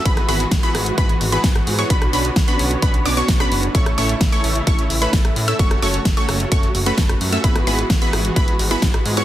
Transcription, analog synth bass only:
X:1
M:4/4
L:1/8
Q:1/4=130
K:Emix
V:1 name="Analog synth bass" clef=bass
G,,, G,,, G,,, G,,, G,,, G,,, G,,, G,, | B,,, B,,, B,,, B,,, B,,, B,,, B,,, F,,, | A,,, A,,, A,,, A,,, A,,, A,,, A,,, A,, | F,,, F,,, F,,, F,,, F,,, F,,, F,,, F,, |
G,,, G,,, G,,, G,,, G,,, G,,, G,,, G,, |]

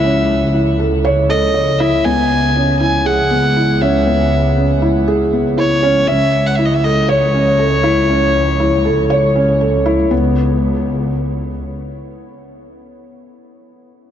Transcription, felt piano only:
X:1
M:4/4
L:1/8
Q:1/4=119
K:Bmix
V:1 name="Felt piano"
C z E A c A c E | B, z C E G B, E C | B, z C E G B, E C | C z E A c C A E |
C z E A c C A E | B, z6 z | z8 |]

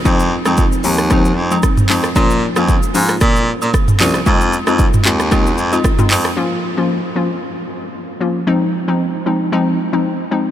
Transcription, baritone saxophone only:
X:1
M:4/4
L:1/16
Q:"Swing 16ths" 1/4=114
K:Bbm
V:1 name="Baritone saxophone" clef=bass
F,,3 F,,2 z E,,4 F,,2 z2 F,,2 | B,,3 F,,2 z A,,2 B,,3 B,, z2 C,,2 | F,,3 F,,2 z E,,4 F,,2 z2 F,,2 | z16 |
z16 |]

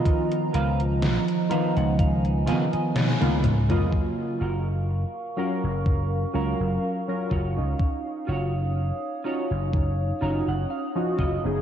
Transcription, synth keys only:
X:1
M:4/4
L:1/16
Q:"Swing 16ths" 1/4=62
K:Gb
V:1 name="Synth keys"
[E,CF]6 [E,F,C]4 [E,F,C]3 [E,B,CF] z [D,G,B,F]- | [D,G,B,F]2 z4 [G,DBf]4 [G,DBf]3 [G,DFB] z [DE]- | [DE]6 [DE]4 [DE]3 [F,DEG] z [G,CEA] |]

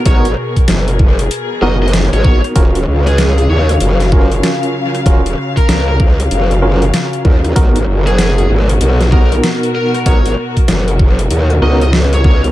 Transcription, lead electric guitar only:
X:1
M:4/4
L:1/16
Q:"Swing 16ths" 1/4=96
K:Abdor
V:1 name="Lead electric guitar"
d z8 z e e z d d z | z3 A A2 d z8 z | z3 B B B z8 z2 | z3 A A2 z4 B z3 B z |
d z8 z e e z d d z |]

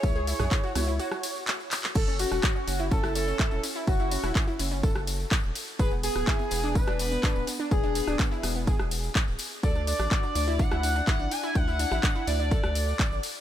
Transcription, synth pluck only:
X:1
M:4/4
L:1/16
Q:1/4=125
K:F#m
V:1 name="Synth pluck"
E G E G E F E E F6- F z | A C C C F C C E C E C C E C C E | C E C E C E C C A6- A z | G B, B, B, E B, B, D B, D B, B, D B, B, D |
B, D B, D B, E B, B, G6- G z | A D D D F D D E D E D D E D D E | D E D E D E D D A6- A z |]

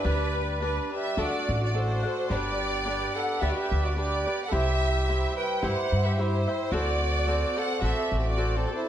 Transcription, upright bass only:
X:1
M:4/4
L:1/16
Q:"Swing" 1/4=108
K:G
V:1 name="Upright bass" clef=bass
D,,8 D,, z A,,,6 | G,,,8 D,, z D,,6 | C,,8 G,, z G,,6 | D,,8 A,,, z A,,,6 |]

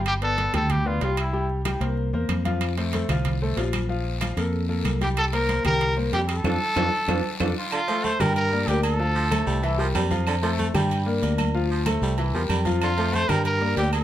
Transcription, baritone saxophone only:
X:1
M:4/4
L:1/8
Q:1/4=188
K:F
V:1 name="Baritone saxophone" clef=bass
z8 | z8 | z8 | z8 |
z8 | z8 | D, F, A, G,4- G,- | G, F,2 G,2 F, G,2 |
D, F, A, G,4- G,- | G, F,2 G,2 F, G,2 | D, F, A, G,4- G, |]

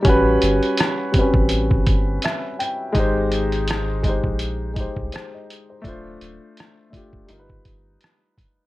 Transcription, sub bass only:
X:1
M:4/4
L:1/16
Q:"Swing 16ths" 1/4=83
K:Ablyd
V:1 name="Sub bass" clef=bass
=A,,,2 G,,, z4 A,,,3 G,,,2 z4 | A,,,6- A,,, B,,,4 C,, z4 | D,,,2 D,,, z4 _F,,, G,,,2 G,,,2 z4 |]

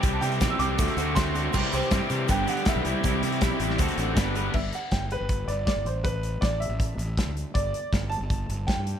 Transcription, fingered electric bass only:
X:1
M:4/4
L:1/16
Q:1/4=160
K:G
V:1 name="Fingered electric bass" clef=bass
C,,2 C,2 B,,, z C,,2 D,, z D,,6 | C,, z C,, z G,, z C,2 G,,,2 z3 B,,, C,, z | C,,2 C,2 B,,, z A,,,2 D,, z A,,,2 G,,,4 | G,,,2 z2 G,,,3 G,,,3 G,,,2 z G,,, A,,,2- |
A,,,4 A,,,3 A,,,3 A,,,2 z D,,2 z | G,,,2 z2 G,,,3 G,,,3 G,,,2 z G,,2 z |]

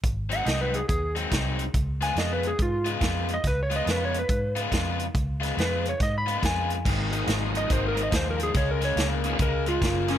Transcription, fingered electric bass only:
X:1
M:4/4
L:1/8
Q:"Swing" 1/4=141
K:Db
V:1 name="Fingered electric bass" clef=bass
A,,,2 C,,2 E,,2 C,,2 | D,,2 F,,2 A,,2 F,,2 | D,,2 F,,2 A,,2 F,,2 | D,,2 F,,2 A,,2 F,,2 |
A,,,2 A,,,2 A,,,2 E,,2 | D,,2 D,,2 D,,2 G,,,2 |]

